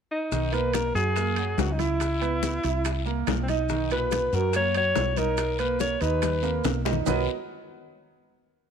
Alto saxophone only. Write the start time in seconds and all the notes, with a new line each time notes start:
0.11 D#4
0.53 B4
0.74 A#4
0.95 G#4
1.60 F#4
1.73 D#4
1.80 E4
3.43 C4
3.49 D#4
3.92 B4
4.34 A#4
4.56 C#5
4.77 C#5
5.18 A#4
5.59 B4
5.81 C#5
6.01 B4
7.07 B4